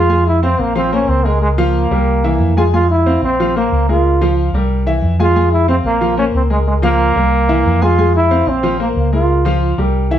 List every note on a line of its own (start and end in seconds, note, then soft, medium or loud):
0.00 0.53 F2 medium
0.00 0.25 F4 loud
0.09 0.36 G#3 medium
0.09 0.36 G#4 medium
0.09 0.37 G#5 medium
0.27 0.42 E4 loud
0.43 0.70 C4 medium
0.43 0.62 C4 loud
0.43 0.70 C5 medium
0.43 0.70 F5 medium
0.59 1.05 A#1 loud
0.59 0.76 A#3 loud
0.75 0.89 F3 medium
0.75 0.91 C4 loud
0.75 0.89 F4 medium
0.75 0.89 F5 medium
0.92 1.19 A#3 medium
0.92 1.10 C#4 loud
0.92 1.19 A#4 medium
0.92 1.19 C5 medium
1.08 1.84 C#2 medium
1.08 1.27 C4 medium
1.25 1.52 G#3 medium
1.25 1.42 G#3 medium
1.25 1.52 G#4 medium
1.25 1.52 A#4 medium
1.42 1.49 G#3 medium
1.58 1.85 F3 medium
1.58 2.53 A#3 loud
1.58 1.85 F4 loud
1.58 1.85 F5 loud
1.91 2.36 C2 medium
1.91 2.18 G3 medium
1.91 2.18 G4 medium
1.91 2.18 A#4 medium
2.24 2.51 E3 medium
2.24 2.51 E4 medium
2.24 2.51 E5 medium
2.39 3.16 F2 medium
2.57 2.70 G#3 medium
2.57 2.64 F4 medium
2.57 2.70 G#4 medium
2.57 2.70 G#5 medium
2.73 3.00 G#3 medium
2.73 2.88 F4 loud
2.73 3.00 G#4 medium
2.73 3.00 G#5 medium
2.91 3.20 E4 loud
3.06 3.33 C4 medium
3.06 3.33 C5 medium
3.06 3.33 F5 medium
3.22 3.68 A#1 loud
3.22 3.54 C4 medium
3.39 3.52 F3 medium
3.39 3.53 F4 medium
3.39 3.53 F5 medium
3.56 3.82 A#3 medium
3.56 3.87 A#3 medium
3.56 3.82 A#4 medium
3.56 3.83 C5 medium
3.71 4.48 C#2 medium
3.89 4.15 G#3 medium
3.89 4.35 F4 medium
3.89 4.15 G#4 medium
3.89 4.15 A#4 medium
4.21 4.48 F3 medium
4.21 4.48 F4 medium
4.21 4.48 F5 medium
4.53 4.99 C2 medium
4.53 4.81 G3 medium
4.53 4.81 G4 medium
4.53 4.81 A#4 medium
4.86 5.13 E3 medium
4.86 5.13 E4 medium
4.86 5.13 E5 medium
5.02 5.78 F2 medium
5.19 5.33 G#3 medium
5.19 5.50 F4 loud
5.19 5.33 G#4 medium
5.19 5.33 G#5 medium
5.36 5.62 G#3 medium
5.36 5.62 G#4 medium
5.36 5.63 G#5 medium
5.52 5.67 E4 loud
5.68 5.95 C4 medium
5.68 5.77 C4 loud
5.68 5.95 C5 medium
5.68 5.95 F5 medium
5.84 6.30 A#1 loud
5.84 6.16 A#3 loud
6.01 6.14 F3 medium
6.01 6.14 F4 medium
6.01 6.15 F5 medium
6.17 6.44 A#3 medium
6.17 6.26 C#4 loud
6.17 6.44 A#4 medium
6.17 6.44 C5 medium
6.34 7.10 C#2 medium
6.34 6.42 C4 medium
6.50 6.77 G#3 medium
6.50 6.58 G#3 medium
6.50 6.77 G#4 medium
6.50 6.77 A#4 medium
6.67 6.74 G#3 medium
6.82 7.09 F3 medium
6.82 7.84 A#3 loud
6.82 7.10 F4 medium
6.82 7.10 F5 loud
7.15 7.61 C2 medium
7.15 7.42 G3 medium
7.15 7.43 G4 medium
7.15 7.43 A#4 medium
7.49 7.75 E3 medium
7.49 7.75 E4 medium
7.49 7.76 E5 medium
7.65 8.41 F2 medium
7.82 7.95 G#3 medium
7.82 8.14 F4 loud
7.82 7.95 G#4 medium
7.82 7.95 G#5 medium
7.98 8.24 G#3 medium
7.98 8.25 G#4 medium
7.98 8.25 G#5 medium
8.16 8.50 E4 loud
8.31 8.57 C4 medium
8.31 8.57 C5 medium
8.31 8.57 F5 medium
8.46 8.92 A#1 loud
8.46 8.80 C4 loud
8.63 8.76 F3 medium
8.63 8.77 F4 medium
8.63 8.77 F5 medium
8.80 9.06 A#3 medium
8.80 8.88 A#3 medium
8.80 9.06 A#4 medium
8.80 9.06 C5 medium
8.96 9.72 C#2 medium
8.96 9.12 A#3 medium
9.13 9.39 G#3 medium
9.13 9.59 F4 medium
9.13 9.39 G#4 medium
9.13 9.39 A#4 medium
9.45 9.72 F3 loud
9.45 9.72 F4 medium
9.45 9.72 F5 medium
9.78 10.19 C2 medium
9.78 10.05 G3 medium
9.78 10.05 G4 medium
9.78 10.05 A#4 medium
10.11 10.19 E3 medium
10.11 10.19 E4 medium
10.11 10.19 E5 medium